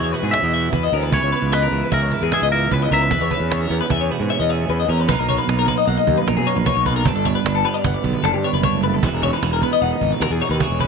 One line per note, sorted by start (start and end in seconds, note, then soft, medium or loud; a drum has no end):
0.00 0.12 E2 medium
0.00 0.73 E3 medium
0.00 1.14 B3 medium
0.00 0.34 E4 medium
0.00 0.13 F#4 medium
0.00 0.12 C#5 medium
0.00 0.13 C#5 medium
0.12 0.73 B2 medium
0.12 0.53 F#4 medium
0.12 0.33 B4 medium
0.12 0.23 B4 medium
0.12 cajon slap soft
0.23 0.32 G#2 medium
0.23 0.33 G#4 medium
0.31 0.44 C#4 medium
0.31 0.69 E5 medium
0.31 0.44 E5 medium
0.31 cajon slap medium
0.42 0.70 E2 medium
0.42 0.93 E4 soft
0.42 0.53 D#5 medium
0.53 1.13 F#4 medium
0.53 0.73 E5 medium
0.53 cajon slap soft
0.72 0.91 E2 medium
0.72 1.13 E3 medium
0.72 0.83 B4 medium
0.72 cajon bass medium
0.83 0.93 D#5 medium
0.92 1.11 D2 medium
0.92 1.03 C#4 medium
0.92 1.03 A#4 medium
0.92 cajon slap soft
1.03 1.13 E4 medium
1.03 1.11 B4 medium
1.12 1.22 C#2 loud
1.12 1.72 C#3 medium
1.12 1.72 E3 medium
1.12 1.33 B3 medium
1.12 2.13 E4 medium
1.12 1.94 G#4 soft
1.12 1.22 B4 medium
1.12 1.54 C#5 medium
1.12 cajon bass loud
1.23 1.32 C#2 medium
1.23 1.32 C#5 medium
1.32 2.33 B3 medium
1.32 1.52 B4 medium
1.32 cajon slap soft
1.42 1.70 C#2 medium
1.52 1.93 B4 medium
1.52 1.62 D#5 medium
1.52 cajon slap loud
1.63 1.82 A#4 medium
1.71 1.81 C#2 medium
1.71 3.10 E3 medium
1.71 cajon slap soft
1.82 1.92 B4 medium
1.92 2.10 C#2 medium
1.92 3.10 G#4 medium
1.92 2.30 A#4 medium
1.92 2.02 E5 medium
1.92 cajon bass loud
2.02 2.13 C#5 medium
2.12 2.72 G#2 medium
2.12 2.52 E4 medium
2.12 2.22 B4 medium
2.12 cajon bass medium
2.12 cajon slap soft
2.22 2.31 E2 medium
2.22 2.32 G#4 medium
2.32 2.92 B3 medium
2.32 2.51 G#4 medium
2.32 2.42 E5 medium
2.32 cajon slap loud
2.42 2.69 C#2 medium
2.42 2.52 D#5 medium
2.52 3.09 E4 medium
2.52 2.73 A#4 medium
2.52 2.72 E5 medium
2.52 cajon slap soft
2.71 2.90 C#2 medium
2.71 3.09 C#3 medium
2.71 2.82 B4 medium
2.71 2.92 B4 medium
2.71 cajon bass medium
2.82 2.92 D#5 medium
2.91 3.10 C#2 medium
2.91 3.35 B3 medium
2.91 3.02 A#4 medium
2.91 4.66 E5 medium
2.91 cajon bass medium
2.91 cajon slap soft
3.02 3.11 B4 medium
3.11 3.20 E2 loud
3.11 4.68 E3 medium
3.11 3.21 B4 medium
3.11 cajon bass loud
3.21 3.30 E2 medium
3.21 3.31 C#5 medium
3.31 4.29 C#4 medium
3.31 3.51 B4 medium
3.31 cajon bass medium
3.31 cajon slap soft
3.40 3.68 E2 medium
3.51 3.61 C#5 medium
3.51 cajon slap loud
3.61 3.80 A#4 medium
3.70 3.79 E2 medium
3.70 5.07 B3 medium
3.70 cajon slap soft
3.81 3.91 B4 medium
3.90 4.09 E2 medium
3.90 4.11 G#4 medium
3.90 4.01 E5 medium
3.90 cajon bass loud
4.01 4.11 C#5 medium
4.10 4.70 B2 medium
4.10 4.21 F#4 medium
4.10 4.21 B4 medium
4.10 cajon slap soft
4.20 4.29 G#2 medium
4.20 4.30 G#4 medium
4.20 4.49 G#4 medium
4.30 4.87 C#4 medium
4.30 4.39 E5 medium
4.30 cajon slap soft
4.40 4.67 E2 medium
4.40 4.50 D#5 medium
4.49 5.07 G#4 medium
4.49 4.70 E5 medium
4.49 cajon slap soft
4.69 4.87 E2 medium
4.69 5.09 E3 medium
4.69 4.79 B4 medium
4.69 cajon slap soft
4.80 4.89 D#5 medium
4.88 5.07 E2 medium
4.88 5.09 C#4 medium
4.88 5.00 A#4 medium
4.88 cajon slap soft
5.00 5.07 B4 medium
5.09 5.18 B1 loud
5.09 6.64 B2 medium
5.09 5.67 F#3 soft
5.09 5.28 A#3 medium
5.09 5.48 D#4 medium
5.09 7.05 A#4 medium
5.09 5.19 B4 loud
5.09 cajon bass loud
5.19 5.37 B1 medium
5.19 5.28 A#4 medium
5.29 5.87 A#3 medium
5.29 5.38 C#5 medium
5.29 cajon bass medium
5.38 5.58 B4 medium
5.48 5.66 B1 medium
5.48 6.26 D#4 medium
5.48 cajon slap loud
5.59 5.68 A#4 medium
5.67 7.03 F#3 medium
5.67 5.77 B4 medium
5.67 cajon bass medium
5.78 5.87 D#5 medium
5.87 5.97 B1 loud
5.87 6.46 A#3 medium
5.87 5.98 F#5 medium
5.87 cajon slap medium
5.87 cajon slap soft
5.98 6.17 D#5 medium
6.07 6.17 D#2 medium
6.07 6.66 F#2 medium
6.07 cajon bass medium
6.18 6.27 B4 medium
6.27 6.36 A#1 medium
6.27 6.65 D#4 medium
6.27 6.36 A#4 medium
6.27 cajon slap loud
6.37 6.46 B2 medium
6.37 6.47 G#4 medium
6.47 6.87 A#3 medium
6.47 6.57 C#5 medium
6.47 cajon slap soft
6.56 6.66 A#1 medium
6.56 6.67 B4 medium
6.66 7.05 B2 medium
6.66 7.04 D#4 medium
6.66 6.86 C#5 medium
6.66 cajon bass loud
6.75 7.03 B1 medium
6.86 7.04 A#3 medium
6.86 6.96 B4 medium
6.86 cajon bass medium
6.96 7.06 A#4 medium
7.05 7.14 G1 loud
7.05 8.61 G2 medium
7.05 7.45 D4 medium
7.05 7.15 B4 medium
7.05 cajon bass loud
7.15 7.34 G1 medium
7.15 7.25 A4 medium
7.25 7.85 B3 medium
7.25 7.35 C#5 medium
7.25 cajon bass medium
7.25 cajon slap soft
7.35 7.55 B4 medium
7.45 7.63 G1 loud
7.45 8.23 D4 medium
7.45 cajon slap loud
7.55 7.65 A4 medium
7.65 9.00 G3 medium
7.65 7.74 B4 medium
7.65 cajon slap soft
7.74 7.84 D5 medium
7.84 7.94 G1 loud
7.84 8.43 B3 medium
7.84 7.94 F#5 medium
7.84 cajon bass loud
7.94 8.14 D5 medium
8.04 8.13 B1 medium
8.04 9.00 D3 medium
8.04 cajon bass medium
8.04 cajon slap soft
8.14 8.24 B4 medium
8.23 8.33 F#1 loud
8.23 8.62 D4 medium
8.23 8.33 A4 medium
8.23 cajon slap loud
8.33 8.43 G2 medium
8.33 8.44 G4 medium
8.44 8.82 B3 medium
8.44 8.53 C#5 medium
8.44 cajon slap soft
8.53 8.62 F#1 loud
8.53 8.63 B4 medium
8.63 9.00 G2 medium
8.63 9.00 D4 medium
8.63 8.83 C#5 medium
8.63 cajon bass loud
8.63 cajon slap soft
8.73 9.01 F#1 medium
8.82 8.94 A3 medium
8.82 8.94 B4 medium
8.82 cajon slap soft
8.94 9.03 B3 medium
8.94 9.03 A4 medium
9.03 9.12 E1 loud
9.03 10.60 E3 medium
9.03 9.43 G#4 medium
9.03 9.14 B4 medium
9.03 cajon bass loud
9.12 9.31 E1 medium
9.12 9.23 A#4 medium
9.22 9.33 C#4 medium
9.22 9.33 C#5 medium
9.22 cajon bass medium
9.33 9.81 D#4 medium
9.33 9.52 B4 medium
9.42 9.61 E1 medium
9.42 9.52 F#4 medium
9.42 cajon slap loud
9.52 10.21 G#4 medium
9.52 9.62 A#4 medium
9.62 10.87 B3 medium
9.62 9.72 B4 medium
9.62 cajon bass medium
9.62 cajon slap soft
9.73 9.82 D#5 medium
9.81 9.91 E1 medium
9.81 10.41 D#4 medium
9.81 9.92 F#5 medium
9.81 cajon slap medium
9.92 10.12 D#5 medium
10.01 10.10 G#1 medium
10.01 10.61 B2 medium
10.01 cajon bass medium
10.12 10.22 B4 medium
10.20 10.30 D#2 loud
10.20 10.31 F#4 medium
10.20 10.32 A#4 medium
10.20 cajon slap loud
10.30 10.40 E2 medium
10.30 10.61 G#4 medium
10.30 10.41 G#4 medium
10.41 10.80 D#4 medium
10.41 10.51 C#5 medium
10.41 cajon slap soft
10.49 10.59 D#2 loud
10.49 10.60 B4 medium
10.60 10.87 E3 medium
10.60 10.87 G#4 medium
10.60 10.80 C#5 medium
10.60 cajon bass loud
10.70 10.87 E1 medium
10.80 10.87 C#4 medium
10.80 10.87 B4 medium
10.80 cajon bass medium